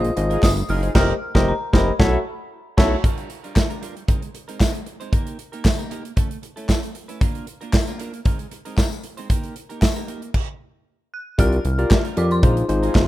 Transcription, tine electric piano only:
Already playing: F4 G#4 C5 D#5
0.16 F4 G#4 C5 D#5
0.82 C5 D#5
0.95 G4 A#4 C5 D#5
1.35 G4 A#4 C5 D#5
1.73 G4 A#4 C5 D#5
1.99 F#4 A4 C#5 E5
2.77 F#4 A4 C#5 E5
11.38 F4 G4 A#4 D5
11.78 F4 G4 A#4 D5
12.17 F4 G4 A#4 D5
12.43 D#4 F4 G#4 C5
12.68 D#4 F4 G#4 C5

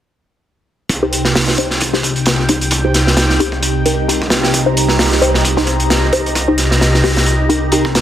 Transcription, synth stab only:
1.02 D#4 G4 C5
1.58 D#4 G4 C5
1.93 D#4 G4 C5
2.49 D#4 G4 C5
2.84 D#4 G4 C5
3.40 D#4 G4 C5
3.86 D#4 G4 A#4
4.08 D#4 G4 A#4
4.66 D#4 G4 C5
5.22 D#4 G4 C5
5.57 D#4 G4 C5
6.13 D#4 G4 C5
6.48 D#4 G4 C5
7.04 D#4 G4 C5
7.49 D#4 G4 A#4
7.72 D#4 G4 A#4

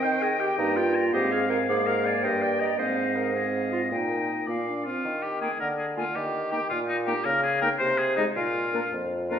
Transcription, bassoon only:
0.04 D#3
0.58 G2
1.14 G#2
1.69 G#2
2.24 G2
2.79 G#2
3.91 A#2
4.48 A#2
5.04 D#3
5.60 D3
6.16 D#3
6.70 A#2
7.25 C#3
7.80 C3
8.36 A#2
8.92 F2

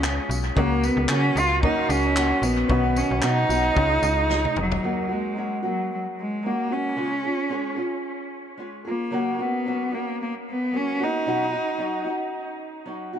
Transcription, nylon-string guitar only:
0.01 G#3 C#4 F4 G#4
0.55 C#3 F#3 A#3 C#4 F#4
1.08 F#3 A#3 C#4 F#4
1.62 C#3 F#3 A#3 C#4 F#4
2.15 F#3 A#3 C#4 F#4
2.68 B2 D#3 F#3 B3 C#4 F#4
3.21 F#3 B3 C#4 F#4
3.49 F#3 B3 C#4 F#4
3.74 C#3 G#3 C#4 F4 G#4
4.28 G#3 C#4 F4 G#4
4.83 F#2 C#3 F#3 A#3 C#4 F#4
5.09 F#3 A#3 C#4 F#4
5.35 F#3 A#3 C#4 F#4
5.63 F#3 A#3 C#4 F#4
6.43 F#3 A#3 C#4 F#4
6.70 F#3 A#3 C#4 F#4
6.96 C#3 G#3 C#4 F4 G#4
7.25 C#4 F4 G#4
7.49 G#3 C#4 F4 G#4
7.76 C#4 F4 G#4
8.57 G#3 C#4 F4 G#4
8.85 C#4 F4 G#4
9.11 C#3 F#3 A#3 C#4 F#4
9.39 A#3 C#4 F#4
9.65 F#3 A#3 C#4 F#4
9.91 A#3 C#4 F#4
10.71 F#3 A#3 C#4 F#4
11.00 A#3 C#4 F#4
11.26 B2 F#3 C#4 D#4 F#4
11.51 C#4 D#4 F#4
11.78 F#3 C#4 D#4 F#4
12.05 C#4 D#4 F#4
12.86 F#3 C#4 D#4 F#4
13.13 D#4 F#4

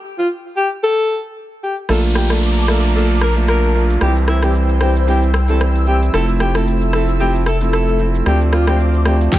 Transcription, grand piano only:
1.89 A3 A#3 D4 F4
2.30 A3 A#3 D4 F4
2.69 A3 A#3 D4 F4
2.95 A3 A#3 D4 F4
3.36 A3 A#3 D4 F4
3.75 A3 A#3 D4 F4
4.01 E3 G3 C4 E4
4.42 E3 G3 C4 E4
4.81 E3 G3 C4 E4
5.07 E3 G3 C4 E4
5.49 E3 G3 C4 E4
5.87 E3 G3 C4 E4
6.13 F3 A3 C4 E4
6.55 F3 A3 C4 E4
6.93 F3 A3 C4 E4
7.20 F3 A3 C4 E4
7.61 F3 A3 C4 E4
7.99 F3 A3 C4 E4
8.26 F3 A3 C4 D4
8.67 F3 A3 C4 D4
9.06 F3 A3 C4 D4

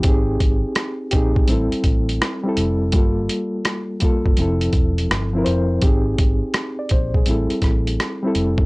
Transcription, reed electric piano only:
0.03 C4 D#4 G4
0.08 G#4
1.11 C4 D#4 G4
1.16 G#4
1.48 G3 C4 E4
1.52 A4
2.44 G3 C4 E4
2.49 A4
2.92 G3 A#3 F4
2.97 A4
4.00 G3 A#3 F4
4.04 A4
4.37 F3 C4 E4
4.42 A4
5.33 F3 C4 E4
5.38 A#4
5.44 C5
5.82 C4 D#4 G4
5.87 G#4
6.79 D5
6.92 C5
7.16 G#4
7.26 G3 C4 E4
7.31 A4
8.23 G3 C4 E4
8.28 A4

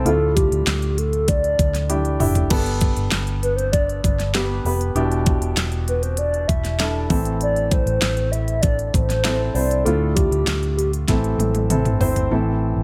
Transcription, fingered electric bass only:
0.05 D2
0.51 D2
0.67 D2
1.59 D2
2.20 F1
2.51 G1
2.97 G1
3.12 G1
4.04 G1
4.64 F1
4.95 E1
5.41 E1
5.57 E1
6.49 E1
7.10 A1
7.86 A1
8.02 A1
8.94 A1
9.54 C2
9.86 D2
10.31 D2
10.47 D2
11.08 A1
11.38 A1
12.00 G1
12.31 A1
12.76 A1

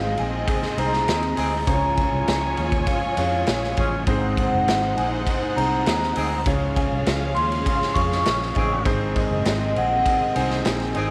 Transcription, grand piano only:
Already playing: G#2 C4 D#4 G#4 C5
0.78 C4 D#4 G#4 C5
1.67 C#3 C#4 F4 G#4 C5
1.74 C#5
3.18 C#4 F4 G#4 C#5
4.07 G#2 C4 D#4 G#4 C5
5.57 C4 D#4 G#4 C5
6.47 C#3 C#4 F4 G#4 C#5
7.95 C#4 F4 G#4 C#5
8.85 G#2 C4 D#4 G#4 C5
10.35 C4 D#4 G#4 C5

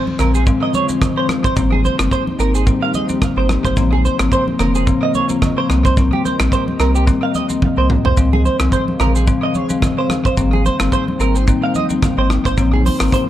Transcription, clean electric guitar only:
0.20 A#4
0.35 G#4
0.63 D#5
0.75 C#5
1.17 C5
1.45 C5
1.72 G#4
1.85 C5
2.12 C5
2.40 A#4
2.55 G#4
2.83 F5
2.95 D#5
3.38 C5
3.65 C5
3.93 G#4
4.05 C5
4.33 C5
4.60 A#4
4.75 G#4
5.03 D#5
5.15 C#5
5.58 C5
5.85 C5
6.13 G4
6.25 C5
6.53 C5
6.80 A#4
6.95 G4
7.23 F5
7.36 D#5
7.78 C5
8.06 C5
8.33 G#4
8.45 C5
8.73 C5
9.01 A#4
9.16 G#4
9.43 D#5
9.56 C#5
9.98 C5
10.26 C5
10.53 G#4
10.66 C5
10.93 C5
11.21 A#4
11.36 G#4
11.64 F5
11.76 D#5
12.19 C5
12.46 C5
12.74 G#4
12.86 C5
13.14 C5

